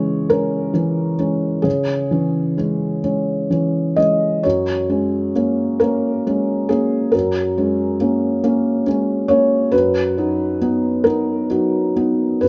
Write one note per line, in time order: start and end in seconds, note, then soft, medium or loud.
0.00 1.61 C#3 soft
0.00 0.74 E3 soft
0.00 0.26 G#3 soft
0.00 0.31 C#4 soft
0.00 0.29 C#5 medium
0.30 0.70 G#3 soft
0.30 0.71 C#4 soft
0.30 1.65 A#4 medium
0.74 1.15 E3 soft
0.74 1.15 C#4 soft
1.19 1.61 G#3 soft
1.19 1.61 C#4 soft
1.62 4.40 C#3 soft
1.62 3.96 G#4 soft
2.11 2.54 E3 soft
2.11 2.55 C#4 soft
2.58 3.00 G#3 soft
2.58 3.01 C#4 soft
3.04 3.47 G#3 soft
3.04 3.47 C#4 soft
3.50 3.94 E3 soft
3.50 3.94 C#4 soft
3.96 4.40 G#3 soft
3.96 4.40 C#4 soft
3.96 4.43 D#5 medium
4.43 7.10 F#2 soft
4.43 5.80 C#5 soft
4.89 5.31 G#3 soft
4.89 5.31 C#4 soft
5.36 5.77 A#3 soft
5.36 5.77 C#4 soft
5.80 6.22 A#3 soft
5.80 6.22 C#4 soft
5.80 6.69 A#4 medium
6.27 6.66 G#3 soft
6.27 6.67 C#4 soft
6.69 7.10 A#3 soft
6.69 7.10 C#4 soft
6.69 7.13 G#4 medium
7.12 9.68 F#2 soft
7.12 8.85 A#4 medium
7.58 7.96 G#3 soft
7.58 7.96 C#4 soft
8.01 8.39 A#3 soft
8.01 8.39 C#4 soft
8.44 8.82 A#3 soft
8.44 8.83 C#4 soft
8.87 9.26 G#3 soft
8.87 9.26 C#4 soft
9.28 9.69 A#3 soft
9.28 9.69 C#4 soft
9.28 9.72 C#5 medium
9.72 12.38 F#2 soft
9.72 11.05 B4 medium
10.18 10.57 F#3 soft
10.18 10.58 D#4 soft
10.62 11.02 B3 soft
10.62 11.02 D#4 soft
11.04 11.46 B3 soft
11.04 11.47 D#4 soft
11.04 12.41 A#4 medium
11.50 11.92 F#3 soft
11.50 11.92 D#4 soft
11.96 12.38 B3 soft
11.96 12.38 D#4 soft
12.41 12.49 F#2 soft
12.41 12.49 B4 medium